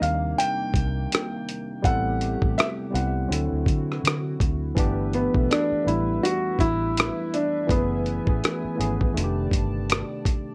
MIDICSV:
0, 0, Header, 1, 7, 480
1, 0, Start_track
1, 0, Key_signature, 1, "major"
1, 0, Tempo, 731707
1, 1208, Time_signature, 4, 2, 24, 8
1, 6918, End_track
2, 0, Start_track
2, 0, Title_t, "Felt piano"
2, 0, Program_c, 0, 0
2, 12, Note_on_c, 0, 77, 91
2, 252, Note_on_c, 0, 79, 115
2, 257, Note_off_c, 0, 77, 0
2, 1212, Note_on_c, 0, 78, 102
2, 1239, Note_off_c, 0, 79, 0
2, 1692, Note_on_c, 0, 76, 93
2, 1704, Note_off_c, 0, 78, 0
2, 1745, Note_off_c, 0, 76, 0
2, 1932, Note_on_c, 0, 78, 73
2, 2624, Note_off_c, 0, 78, 0
2, 3374, Note_on_c, 0, 59, 93
2, 3594, Note_off_c, 0, 59, 0
2, 3613, Note_on_c, 0, 62, 101
2, 3853, Note_on_c, 0, 64, 82
2, 3858, Note_off_c, 0, 62, 0
2, 4089, Note_on_c, 0, 66, 99
2, 4098, Note_off_c, 0, 64, 0
2, 4330, Note_on_c, 0, 64, 111
2, 4336, Note_off_c, 0, 66, 0
2, 4814, Note_on_c, 0, 62, 90
2, 4823, Note_off_c, 0, 64, 0
2, 5034, Note_off_c, 0, 62, 0
2, 5052, Note_on_c, 0, 59, 92
2, 6704, Note_off_c, 0, 59, 0
2, 6918, End_track
3, 0, Start_track
3, 0, Title_t, "Analog synth pad"
3, 0, Program_c, 1, 89
3, 0, Note_on_c, 1, 48, 81
3, 0, Note_on_c, 1, 51, 65
3, 0, Note_on_c, 1, 58, 79
3, 1181, Note_off_c, 1, 51, 0
3, 1190, Note_off_c, 1, 48, 0
3, 1190, Note_off_c, 1, 58, 0
3, 1207, Note_on_c, 1, 57, 76
3, 1208, Note_on_c, 1, 48, 73
3, 1208, Note_on_c, 1, 67, 85
3, 2158, Note_off_c, 1, 57, 0
3, 2158, Note_off_c, 1, 67, 0
3, 2164, Note_on_c, 1, 50, 70
3, 2164, Note_on_c, 1, 64, 72
3, 2164, Note_on_c, 1, 66, 87
3, 3109, Note_off_c, 1, 48, 0
3, 3116, Note_off_c, 1, 50, 0
3, 3116, Note_off_c, 1, 66, 0
3, 3117, Note_off_c, 1, 64, 0
3, 3124, Note_on_c, 1, 71, 78
3, 3126, Note_on_c, 1, 64, 81
3, 3126, Note_on_c, 1, 76, 83
3, 5042, Note_on_c, 1, 80, 68
3, 5980, Note_off_c, 1, 71, 0
3, 5981, Note_off_c, 1, 64, 0
3, 5981, Note_off_c, 1, 76, 0
3, 5996, Note_off_c, 1, 80, 0
3, 6003, Note_on_c, 1, 81, 78
3, 6004, Note_on_c, 1, 51, 77
3, 6004, Note_on_c, 1, 74, 67
3, 6918, Note_off_c, 1, 51, 0
3, 6918, Note_off_c, 1, 74, 0
3, 6918, Note_off_c, 1, 81, 0
3, 6918, End_track
4, 0, Start_track
4, 0, Title_t, "Tine electric piano"
4, 0, Program_c, 2, 4
4, 0, Control_c, 2, 64, 127
4, 0, Note_on_c, 2, 55, 69
4, 0, Note_on_c, 2, 58, 63
4, 0, Note_on_c, 2, 60, 66
4, 0, Note_on_c, 2, 62, 88
4, 0, Note_on_c, 2, 63, 63
4, 0, Note_on_c, 2, 70, 69
4, 372, Note_off_c, 2, 55, 0
4, 377, Note_off_c, 2, 60, 0
4, 380, Note_off_c, 2, 58, 0
4, 384, Note_off_c, 2, 63, 0
4, 388, Note_off_c, 2, 70, 0
4, 1194, Note_on_c, 2, 55, 91
4, 1203, Note_on_c, 2, 59, 74
4, 1211, Note_on_c, 2, 60, 91
4, 1216, Control_c, 2, 64, 0
4, 1219, Note_on_c, 2, 64, 84
4, 1221, Note_off_c, 2, 62, 0
4, 1226, Note_on_c, 2, 69, 99
4, 1342, Control_c, 2, 64, 127
4, 1746, Note_off_c, 2, 55, 0
4, 1751, Note_off_c, 2, 59, 0
4, 1755, Note_off_c, 2, 60, 0
4, 1758, Note_off_c, 2, 64, 0
4, 1762, Note_off_c, 2, 69, 0
4, 1905, Note_on_c, 2, 55, 67
4, 1912, Note_on_c, 2, 59, 63
4, 1919, Note_on_c, 2, 60, 66
4, 1927, Note_on_c, 2, 64, 66
4, 1935, Note_on_c, 2, 67, 65
4, 2149, Note_off_c, 2, 60, 0
4, 2149, Note_on_c, 2, 54, 66
4, 2156, Note_off_c, 2, 55, 0
4, 2156, Note_on_c, 2, 60, 69
4, 2160, Note_off_c, 2, 59, 0
4, 2163, Note_off_c, 2, 64, 0
4, 2163, Note_on_c, 2, 62, 64
4, 2171, Note_on_c, 2, 64, 58
4, 2172, Note_off_c, 2, 67, 0
4, 2176, Control_c, 2, 64, 0
4, 2181, Note_on_c, 2, 69, 71
4, 2277, Control_c, 2, 64, 127
4, 2936, Note_off_c, 2, 54, 0
4, 2939, Note_off_c, 2, 60, 0
4, 2943, Note_off_c, 2, 62, 0
4, 2947, Note_off_c, 2, 64, 0
4, 2951, Note_off_c, 2, 69, 0
4, 3116, Note_on_c, 2, 52, 113
4, 3124, Note_on_c, 2, 57, 89
4, 3132, Note_on_c, 2, 59, 100
4, 3136, Control_c, 2, 64, 0
4, 3140, Note_on_c, 2, 62, 100
4, 3147, Note_on_c, 2, 67, 109
4, 3232, Control_c, 2, 64, 127
4, 3395, Note_off_c, 2, 52, 0
4, 3398, Note_off_c, 2, 57, 0
4, 3403, Note_off_c, 2, 59, 0
4, 3406, Note_off_c, 2, 62, 0
4, 3410, Note_off_c, 2, 67, 0
4, 3499, Note_on_c, 2, 52, 59
4, 3506, Note_on_c, 2, 57, 59
4, 3514, Note_on_c, 2, 59, 57
4, 3521, Note_on_c, 2, 62, 57
4, 3530, Note_on_c, 2, 69, 66
4, 3767, Note_off_c, 2, 52, 0
4, 3771, Note_off_c, 2, 57, 0
4, 3775, Note_off_c, 2, 59, 0
4, 3778, Note_off_c, 2, 62, 0
4, 3783, Note_off_c, 2, 69, 0
4, 3829, Note_on_c, 2, 52, 73
4, 3836, Note_on_c, 2, 57, 60
4, 3843, Note_on_c, 2, 59, 66
4, 3852, Note_on_c, 2, 62, 54
4, 3860, Note_on_c, 2, 55, 76
4, 4553, Note_off_c, 2, 52, 0
4, 4557, Note_off_c, 2, 57, 0
4, 4560, Note_off_c, 2, 59, 0
4, 4564, Note_off_c, 2, 62, 0
4, 4569, Note_off_c, 2, 55, 0
4, 5029, Note_on_c, 2, 52, 101
4, 5038, Note_on_c, 2, 57, 70
4, 5045, Note_on_c, 2, 59, 84
4, 5052, Note_on_c, 2, 61, 80
4, 5057, Control_c, 2, 64, 0
4, 5061, Note_on_c, 2, 68, 99
4, 5183, Control_c, 2, 64, 127
4, 5311, Note_off_c, 2, 52, 0
4, 5316, Note_off_c, 2, 57, 0
4, 5319, Note_off_c, 2, 59, 0
4, 5323, Note_off_c, 2, 61, 0
4, 5327, Note_off_c, 2, 68, 0
4, 5412, Note_on_c, 2, 52, 63
4, 5418, Note_on_c, 2, 57, 56
4, 5426, Note_on_c, 2, 59, 50
4, 5435, Note_on_c, 2, 61, 57
4, 5441, Note_on_c, 2, 68, 64
4, 5684, Note_off_c, 2, 52, 0
4, 5687, Note_off_c, 2, 57, 0
4, 5691, Note_off_c, 2, 59, 0
4, 5695, Note_off_c, 2, 61, 0
4, 5698, Note_off_c, 2, 68, 0
4, 5743, Note_on_c, 2, 52, 79
4, 5752, Note_on_c, 2, 57, 74
4, 5759, Note_on_c, 2, 59, 72
4, 5767, Note_on_c, 2, 61, 81
4, 5775, Note_on_c, 2, 68, 89
4, 5986, Note_on_c, 2, 51, 76
4, 5987, Note_off_c, 2, 57, 0
4, 5995, Note_on_c, 2, 57, 77
4, 5996, Note_off_c, 2, 52, 0
4, 6002, Note_on_c, 2, 48, 70
4, 6004, Note_off_c, 2, 59, 0
4, 6008, Note_off_c, 2, 61, 0
4, 6010, Note_on_c, 2, 62, 70
4, 6012, Note_off_c, 2, 68, 0
4, 6017, Control_c, 2, 64, 0
4, 6017, Note_on_c, 2, 65, 68
4, 6060, Note_on_c, 2, 67, 94
4, 6063, Note_off_c, 2, 65, 0
4, 6142, Control_c, 2, 64, 127
4, 6774, Note_off_c, 2, 51, 0
4, 6779, Note_off_c, 2, 57, 0
4, 6782, Note_off_c, 2, 48, 0
4, 6786, Note_off_c, 2, 62, 0
4, 6811, Note_off_c, 2, 67, 0
4, 6918, End_track
5, 0, Start_track
5, 0, Title_t, "Fingered electric bass"
5, 0, Program_c, 3, 33
5, 11, Note_on_c, 3, 39, 90
5, 215, Note_off_c, 3, 39, 0
5, 484, Note_on_c, 3, 36, 95
5, 692, Note_off_c, 3, 36, 0
5, 1209, Note_on_c, 3, 33, 105
5, 1537, Note_off_c, 3, 33, 0
5, 1589, Note_on_c, 3, 33, 90
5, 1673, Note_off_c, 3, 33, 0
5, 1928, Note_on_c, 3, 36, 98
5, 2134, Note_off_c, 3, 36, 0
5, 2170, Note_on_c, 3, 38, 104
5, 2291, Note_off_c, 3, 38, 0
5, 2311, Note_on_c, 3, 38, 83
5, 2394, Note_off_c, 3, 38, 0
5, 2403, Note_on_c, 3, 50, 100
5, 2611, Note_off_c, 3, 50, 0
5, 2649, Note_on_c, 3, 50, 108
5, 2855, Note_off_c, 3, 50, 0
5, 2889, Note_on_c, 3, 38, 84
5, 3094, Note_off_c, 3, 38, 0
5, 3128, Note_on_c, 3, 31, 103
5, 3456, Note_off_c, 3, 31, 0
5, 3508, Note_on_c, 3, 35, 89
5, 3592, Note_off_c, 3, 35, 0
5, 3849, Note_on_c, 3, 33, 77
5, 4054, Note_off_c, 3, 33, 0
5, 4323, Note_on_c, 3, 33, 86
5, 4653, Note_off_c, 3, 33, 0
5, 5047, Note_on_c, 3, 30, 89
5, 5376, Note_off_c, 3, 30, 0
5, 5426, Note_on_c, 3, 33, 104
5, 5512, Note_off_c, 3, 33, 0
5, 5767, Note_on_c, 3, 32, 91
5, 5973, Note_off_c, 3, 32, 0
5, 6008, Note_on_c, 3, 29, 103
5, 6214, Note_off_c, 3, 29, 0
5, 6242, Note_on_c, 3, 31, 88
5, 6573, Note_off_c, 3, 31, 0
5, 6918, End_track
6, 0, Start_track
6, 0, Title_t, "Muted fingered electric bass strokes"
6, 3752, Note_on_c, 9, 29, 39
6, 3818, Note_off_c, 9, 29, 0
6, 5671, Note_on_c, 9, 29, 46
6, 5737, Note_off_c, 9, 29, 0
6, 6918, End_track
7, 0, Start_track
7, 0, Title_t, "Drums"
7, 18, Note_on_c, 9, 42, 61
7, 84, Note_off_c, 9, 42, 0
7, 261, Note_on_c, 9, 42, 106
7, 327, Note_off_c, 9, 42, 0
7, 484, Note_on_c, 9, 36, 76
7, 496, Note_on_c, 9, 42, 67
7, 549, Note_off_c, 9, 36, 0
7, 561, Note_off_c, 9, 42, 0
7, 736, Note_on_c, 9, 42, 98
7, 752, Note_on_c, 9, 37, 103
7, 802, Note_off_c, 9, 42, 0
7, 818, Note_off_c, 9, 37, 0
7, 975, Note_on_c, 9, 42, 63
7, 1041, Note_off_c, 9, 42, 0
7, 1208, Note_on_c, 9, 36, 117
7, 1216, Note_on_c, 9, 42, 75
7, 1274, Note_off_c, 9, 36, 0
7, 1281, Note_off_c, 9, 42, 0
7, 1450, Note_on_c, 9, 42, 47
7, 1516, Note_off_c, 9, 42, 0
7, 1587, Note_on_c, 9, 36, 103
7, 1653, Note_off_c, 9, 36, 0
7, 1697, Note_on_c, 9, 42, 74
7, 1706, Note_on_c, 9, 37, 112
7, 1763, Note_off_c, 9, 42, 0
7, 1772, Note_off_c, 9, 37, 0
7, 1938, Note_on_c, 9, 42, 60
7, 2004, Note_off_c, 9, 42, 0
7, 2180, Note_on_c, 9, 42, 105
7, 2246, Note_off_c, 9, 42, 0
7, 2402, Note_on_c, 9, 36, 75
7, 2415, Note_on_c, 9, 42, 60
7, 2468, Note_off_c, 9, 36, 0
7, 2481, Note_off_c, 9, 42, 0
7, 2569, Note_on_c, 9, 37, 33
7, 2635, Note_off_c, 9, 37, 0
7, 2657, Note_on_c, 9, 42, 93
7, 2673, Note_on_c, 9, 37, 118
7, 2722, Note_off_c, 9, 42, 0
7, 2738, Note_off_c, 9, 37, 0
7, 2888, Note_on_c, 9, 36, 100
7, 2894, Note_on_c, 9, 42, 74
7, 2953, Note_off_c, 9, 36, 0
7, 2960, Note_off_c, 9, 42, 0
7, 3127, Note_on_c, 9, 36, 115
7, 3134, Note_on_c, 9, 42, 64
7, 3193, Note_off_c, 9, 36, 0
7, 3200, Note_off_c, 9, 42, 0
7, 3368, Note_on_c, 9, 42, 43
7, 3433, Note_off_c, 9, 42, 0
7, 3506, Note_on_c, 9, 36, 96
7, 3572, Note_off_c, 9, 36, 0
7, 3616, Note_on_c, 9, 42, 81
7, 3625, Note_on_c, 9, 37, 111
7, 3682, Note_off_c, 9, 42, 0
7, 3691, Note_off_c, 9, 37, 0
7, 3858, Note_on_c, 9, 42, 62
7, 3924, Note_off_c, 9, 42, 0
7, 4100, Note_on_c, 9, 42, 94
7, 4166, Note_off_c, 9, 42, 0
7, 4322, Note_on_c, 9, 36, 80
7, 4334, Note_on_c, 9, 42, 63
7, 4387, Note_off_c, 9, 36, 0
7, 4399, Note_off_c, 9, 42, 0
7, 4575, Note_on_c, 9, 42, 98
7, 4591, Note_on_c, 9, 37, 113
7, 4641, Note_off_c, 9, 42, 0
7, 4657, Note_off_c, 9, 37, 0
7, 4813, Note_on_c, 9, 42, 69
7, 4879, Note_off_c, 9, 42, 0
7, 5047, Note_on_c, 9, 36, 119
7, 5054, Note_on_c, 9, 42, 62
7, 5112, Note_off_c, 9, 36, 0
7, 5120, Note_off_c, 9, 42, 0
7, 5287, Note_on_c, 9, 42, 41
7, 5352, Note_off_c, 9, 42, 0
7, 5425, Note_on_c, 9, 36, 103
7, 5491, Note_off_c, 9, 36, 0
7, 5535, Note_on_c, 9, 42, 72
7, 5544, Note_on_c, 9, 37, 104
7, 5600, Note_off_c, 9, 42, 0
7, 5609, Note_off_c, 9, 37, 0
7, 5777, Note_on_c, 9, 42, 63
7, 5842, Note_off_c, 9, 42, 0
7, 5910, Note_on_c, 9, 36, 91
7, 5976, Note_off_c, 9, 36, 0
7, 6018, Note_on_c, 9, 42, 95
7, 6083, Note_off_c, 9, 42, 0
7, 6241, Note_on_c, 9, 36, 73
7, 6253, Note_on_c, 9, 42, 72
7, 6307, Note_off_c, 9, 36, 0
7, 6319, Note_off_c, 9, 42, 0
7, 6492, Note_on_c, 9, 42, 96
7, 6508, Note_on_c, 9, 37, 112
7, 6558, Note_off_c, 9, 42, 0
7, 6574, Note_off_c, 9, 37, 0
7, 6726, Note_on_c, 9, 36, 91
7, 6732, Note_on_c, 9, 42, 71
7, 6792, Note_off_c, 9, 36, 0
7, 6797, Note_off_c, 9, 42, 0
7, 6918, End_track
0, 0, End_of_file